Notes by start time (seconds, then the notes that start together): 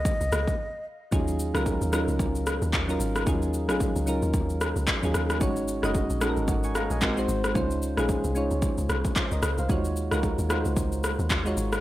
Already playing: D#5
0.05 kick, shaker
0.21 C2, shaker
0.32 C#2, cross-stick, shaker
0.48 kick, shaker
1.11 D#2 F#3 C#4 D#4 F4 G#4, kick, shaker
1.28 shaker
1.40 shaker
1.54 C#2 F#3 C#4 D#4 F4 A#4, cross-stick, shaker
1.66 kick, shaker
1.81 D#2, shaker
1.92 F#3 C#4 D#4 F4 A#4, cross-stick, shaker
2.08 C#2, shaker
2.19 C#2, kick, shaker
2.35 shaker
2.47 cross-stick, shaker
2.62 D#2, shaker
2.73 kick, clap, shaker
2.88 F#3 C#4 D#4 F4 A#4, shaker
3.00 G#1, shaker
3.16 cross-stick, shaker
3.26 D#2 F#3 C#4 D#4 F4 G#4, kick, shaker
3.42 shaker
3.54 shaker
3.68 A#1 F#3 C#4 D#4 F4 G#4, cross-stick, shaker
3.80 kick, shaker
3.96 C#2, shaker
4.06 F#3 C#4 D#4 F4 A#4, shaker
4.22 D#2, shaker
4.34 D#2, kick, shaker
4.50 shaker
4.61 cross-stick, shaker
4.76 C#2, shaker
4.87 kick, clap, shaker
5.02 D#2 F#3 C#4 D#4 F4 G#4, shaker
5.14 D#2, cross-stick, shaker
5.30 cross-stick, shaker
5.40 G#1 G#3 C#4 D#4 F#4 C#5, kick, shaker
5.56 shaker
5.68 shaker
5.82 F#1 G#3 C#4 D#4 F#4 D#5, cross-stick, shaker
5.95 kick, shaker
6.10 A#1, shaker
6.20 G#3 C#4 D#4 F#4 A4, cross-stick, shaker
6.30 A#4
6.37 G#1, shaker
6.48 G#1 C#5 F#5, kick, shaker
6.64 G#5 C#6, shaker
6.75 F5 A#5, cross-stick, shaker
6.90 A#1 D#5 G#5, shaker
7.01 G#3 C4 D#4 F#4 A#4, kick, clap, shaker
7.16 G#3 C4 D#4 F#4 C5, shaker
7.28 G#1, shaker
7.44 cross-stick, shaker
7.54 C#2 G#3 C#4 D#4 F4 C5, kick, shaker
7.71 shaker
7.82 shaker
7.97 A#1 G#3 C#4 D#4 F4 G#4, cross-stick, shaker
8.09 kick, shaker
8.24 C2, shaker
8.35 G#3 C#4 D#4 F4 C#5, shaker
8.51 C#2, shaker
8.62 kick, shaker
8.78 C#2, shaker
8.89 C2, cross-stick, shaker
9.05 kick, shaker
9.15 F4 C5, kick, clap, shaker
9.32 C#2 A#4 D#5, shaker
9.43 C#2, cross-stick, shaker
9.58 C2 C5 F5, shaker
9.69 D#2 G#3 D#4 F4 F#4 C#5, kick, shaker
9.85 shaker
9.96 shaker
10.11 C#2 G#3 D#4 F4 F#4 A#4, cross-stick, shaker
10.23 kick, shaker
10.39 D#2, shaker
10.49 G#3 D#4 F4 F#4 C5, cross-stick, shaker
10.65 C#2, shaker
10.77 C#2, kick, shaker
10.92 shaker
11.04 cross-stick, shaker
11.19 D#2, shaker
11.30 kick, clap, shaker
11.45 G#3 D#4 F4 F#4 C#5, shaker
11.57 G#1, shaker
11.73 cross-stick, shaker